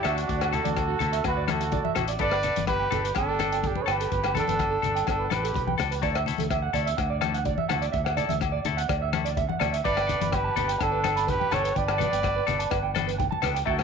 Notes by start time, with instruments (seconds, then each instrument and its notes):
0.03 fingered electric bass D2, clean electric guitar A3 E4 A4 E5, trumpet F#4, cross-stick, closed hi-hat, low agogo
0.07 trumpet D4
0.16 clean electric guitar F#4, closed hi-hat
0.28 fingered electric bass D2, clean electric guitar D5, kick, closed hi-hat
0.40 clean electric guitar F#5, cross-stick, low agogo
0.51 clean electric guitar A3 E4 F#4 A4, trumpet A4, closed hi-hat, low conga
0.56 trumpet F#4
0.64 fingered electric bass D2, clean electric guitar D5, closed hi-hat, high conga
0.77 kick, cross-stick, closed hi-hat, low agogo
0.88 clean electric guitar F#4
0.99 fingered electric bass D2, clean electric guitar A3 E4 A4, closed hi-hat, low conga
1.13 clean electric guitar E5, closed hi-hat
1.24 fingered electric bass D2, clean electric guitar F#4, trumpet F#4 B4, kick, cross-stick, closed hi-hat, low agogo
1.37 clean electric guitar D5
1.48 clean electric guitar A3 E4 A4, trumpet F#4 A4, cross-stick, closed hi-hat, high conga, low agogo
1.60 clean electric guitar F#4, closed hi-hat
1.72 clean electric guitar D5, kick, closed hi-hat, low conga
1.84 clean electric guitar E5, high conga
1.95 fingered electric bass A1, clean electric guitar A3 E4 F#4 A4, cross-stick, closed hi-hat, low conga, low agogo
2.08 clean electric guitar D5, closed hi-hat
2.19 fingered electric bass G1, clean electric guitar B3 D4 A4, trumpet B4 D5, kick, closed hi-hat
2.31 clean electric guitar B4, cross-stick, low agogo
2.43 clean electric guitar D4 A4, closed hi-hat, low conga
2.56 fingered electric bass G1, closed hi-hat, high conga
2.67 trumpet G4 B4, clean electric guitar B4, kick, cross-stick, closed hi-hat, low agogo
2.80 clean electric guitar G5
2.91 fingered electric bass G1, clean electric guitar D4 A4, closed hi-hat, low conga
3.05 clean electric guitar B4, closed hi-hat
3.15 fingered electric bass G1, trumpet D4 A4, clean electric guitar G5, kick, cross-stick, closed hi-hat, low agogo
3.29 clean electric guitar A4
3.39 clean electric guitar D4 A4, cross-stick, closed hi-hat, high conga, low agogo
3.52 clean electric guitar G5, closed hi-hat
3.63 trumpet D4 G4, clean electric guitar A4, kick, closed hi-hat, low conga
3.75 clean electric guitar B4, high conga
3.82 trumpet A4 C#5, clean electric guitar A4
3.88 fingered electric bass G1, clean electric guitar D4 G5, trumpet G4, cross-stick, closed hi-hat, low agogo
3.92 trumpet B4
4.00 clean electric guitar A4, closed hi-hat
4.12 fingered electric bass G1, clean electric guitar B4, kick, closed hi-hat
4.24 clean electric guitar G5, cross-stick, low agogo
4.35 clean electric guitar D4 A4, trumpet D4, closed hi-hat, high conga, low conga
4.39 trumpet A4
4.47 fingered electric bass G1, clean electric guitar B4, closed hi-hat, high conga
4.59 kick, cross-stick, closed hi-hat, low agogo
4.70 clean electric guitar A4
4.82 fingered electric bass G1, clean electric guitar D4 A4, closed hi-hat, low conga
4.95 clean electric guitar G5, closed hi-hat
5.07 fingered electric bass G1, trumpet D4 A4, clean electric guitar A4, kick, cross-stick, closed hi-hat, low agogo
5.19 clean electric guitar B4
5.30 fingered electric bass A1, clean electric guitar D4 A4, trumpet G4 B4, cross-stick, closed hi-hat, high conga, low agogo
5.43 clean electric guitar A4, closed hi-hat
5.54 fingered electric bass B1, clean electric guitar B4, kick, closed hi-hat, low conga
5.67 clean electric guitar G5, high conga
5.78 fingered electric bass C#2, clean electric guitar D4 A4, muted clean electric guitar stroke, cross-stick, closed hi-hat, low conga, low agogo
5.91 clean electric guitar B4, closed hi-hat
6.02 fingered electric bass D2, clean electric guitar F#3 A3 E4 A4 D5, kick, closed hi-hat
6.15 clean electric guitar E5, cross-stick, low agogo
6.26 clean electric guitar A3 E4 A4, closed hi-hat, low conga
6.38 fingered electric bass D2, clean electric guitar A4, closed hi-hat, high conga
6.50 clean electric guitar E5, kick, cross-stick, closed hi-hat, low agogo
6.62 clean electric guitar F#5
6.73 fingered electric bass D2, clean electric guitar A3 E4 A4 D5, closed hi-hat, low conga
6.86 clean electric guitar E5, closed hi-hat
6.97 fingered electric bass D2, clean electric guitar F#5, kick, cross-stick, closed hi-hat, low agogo
7.10 clean electric guitar D5
7.21 clean electric guitar A3 E4 A4, cross-stick, closed hi-hat, high conga, low agogo
7.34 clean electric guitar F#5, closed hi-hat
7.45 clean electric guitar D5, kick, closed hi-hat, low conga
7.58 clean electric guitar E5, high conga
7.69 fingered electric bass D2, clean electric guitar A3 E4 A4 F#5, cross-stick, closed hi-hat, low conga, low agogo
7.82 clean electric guitar D5, closed hi-hat
7.92 fingered electric bass D2, clean electric guitar E5, kick, closed hi-hat
8.05 clean electric guitar F#5, cross-stick, low agogo
8.16 clean electric guitar E4 A4 D5, closed hi-hat, low conga
8.29 fingered electric bass D2, clean electric guitar E5, closed hi-hat, high conga
8.41 kick, cross-stick, closed hi-hat, low agogo
8.52 clean electric guitar D5
8.65 fingered electric bass D2, clean electric guitar A3 E4 A4, closed hi-hat, low conga
8.77 clean electric guitar F#5, closed hi-hat
8.89 fingered electric bass D2, clean electric guitar D5, kick, cross-stick, closed hi-hat, low agogo
9.02 clean electric guitar E5
9.13 clean electric guitar A3 E4 A4, cross-stick, closed hi-hat, high conga, low agogo
9.25 clean electric guitar D5, closed hi-hat
9.37 clean electric guitar E5, kick, closed hi-hat, low conga
9.49 clean electric guitar F#5, high conga
9.60 fingered electric bass D2, clean electric guitar A3 E4 A4 D5, cross-stick, closed hi-hat, low conga, low agogo
9.73 clean electric guitar E5, closed hi-hat
9.84 fingered electric bass G1, clean electric guitar G3 B3 D4 A4 B4, trumpet B4 D5, kick, closed hi-hat
9.97 clean electric guitar G5, cross-stick, low agogo
10.07 clean electric guitar B3 D4 A4, closed hi-hat, low conga
10.20 fingered electric bass G1, clean electric guitar B4, closed hi-hat, high conga
10.32 trumpet G4 B4, clean electric guitar G5, kick, cross-stick, closed hi-hat, low agogo
10.44 clean electric guitar A5
10.56 fingered electric bass G1, clean electric guitar B3 D4 A4 B4, closed hi-hat, low conga
10.68 clean electric guitar G5, closed hi-hat
10.79 fingered electric bass G1, trumpet D4 A4, clean electric guitar A5, kick, cross-stick, closed hi-hat, low agogo
10.92 clean electric guitar B4
11.04 clean electric guitar D4 A4, cross-stick, closed hi-hat, high conga, low agogo
11.16 clean electric guitar B5, closed hi-hat
11.27 trumpet G4 B4, clean electric guitar B4, kick, closed hi-hat, low conga
11.40 clean electric guitar G5, high conga
11.51 fingered electric bass G1, clean electric guitar B3 D4 A4 A5, trumpet A4 C#5, cross-stick, closed hi-hat, low conga, low agogo
11.64 clean electric guitar B4, closed hi-hat
11.75 fingered electric bass G1, trumpet B4 D5, clean electric guitar G5, kick, closed hi-hat
11.88 clean electric guitar A5, cross-stick, low agogo
11.98 clean electric guitar B3 D4 A4 B4, closed hi-hat, high conga, low conga
12.12 fingered electric bass G1, clean electric guitar G5, closed hi-hat
12.23 kick, cross-stick, closed hi-hat, low agogo
12.36 clean electric guitar B4
12.47 fingered electric bass G1, clean electric guitar B3 D4 A4, closed hi-hat, low conga
12.59 clean electric guitar A5, closed hi-hat
12.71 fingered electric bass G1, clean electric guitar B4, kick, cross-stick, closed hi-hat, low agogo
12.83 clean electric guitar G5
12.95 clean electric guitar B3 D4 A4, cross-stick, closed hi-hat, high conga, low agogo
13.07 clean electric guitar B4, closed hi-hat
13.18 clean electric guitar G5, kick, closed hi-hat, low conga
13.31 clean electric guitar A5, high conga
13.42 fingered electric bass C#2, clean electric guitar B3 D4 A4 B4, cross-stick, closed hi-hat, low conga, low agogo
13.54 clean electric guitar G5, closed hi-hat
13.65 fingered electric bass D2, clean electric guitar F#3 A3 E4 A4 E5, trumpet F#4, kick
13.79 clean electric guitar F#5, cross-stick, low agogo